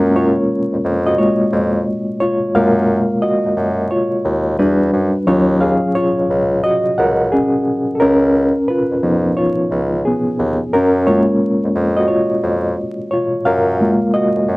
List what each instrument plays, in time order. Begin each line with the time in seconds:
Already playing: bassoon F#2, reed electric piano G#3 A#3 C#4 F4 A#4
0.16 reed electric piano F4 C#5
0.72 bassoon F2
0.84 bassoon F2
1.06 reed electric piano F#4 D#5
1.18 reed electric piano G#3 A#3 F4 C#5
1.52 bassoon F2
2.20 reed electric piano F4 C#5
2.55 bassoon F#2, reed electric piano G#3 A#3 F4 A#4 F5
3.22 reed electric piano F#4 D#5
3.45 bassoon F#2
3.57 bassoon F#2
3.91 reed electric piano F4 C#5
4.25 bassoon D#2
4.59 bassoon E2, reed electric piano G3 D4 F#4 B4
4.93 bassoon F#2
5.27 bassoon D#2, reed electric piano F#3 C#4 F4 C#5
5.61 reed electric piano G#4 F5
5.95 reed electric piano F4 C#5
6.18 bassoon C#2
6.30 bassoon C#2
6.64 reed electric piano F#4 D#5
6.98 bassoon C#2, reed electric piano A#4 F#5
7.32 reed electric piano C#4 G#4
7.95 reed electric piano A4
8.00 bassoon C#2, reed electric piano C#4 A#4
8.68 reed electric piano F4 B4
8.91 bassoon F2
9.03 bassoon F2, reed electric piano F3 B3 D#4
9.37 reed electric piano F4 C#5
9.71 bassoon C#2
10.05 reed electric piano B3 G#4
10.39 bassoon D#2
10.73 bassoon F#2, reed electric piano C#4 A#4
11.07 reed electric piano G#3 A#3 F4 C#5
11.64 bassoon F2
11.75 bassoon F2
11.97 reed electric piano F#4 D#5
12.08 reed electric piano F4 C#5
12.43 bassoon F2
13.11 reed electric piano F4 C#5
13.45 bassoon F#2, reed electric piano A#4 F5
13.81 reed electric piano G#3 A#3 F4
14.14 reed electric piano F#4 D#5
14.36 bassoon F#2
14.48 bassoon F#2